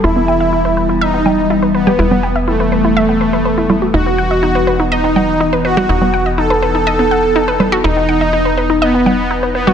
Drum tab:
CG |----------O----O|-O------------O-|----------O----O|-O------------O-|

CG |----------O----O|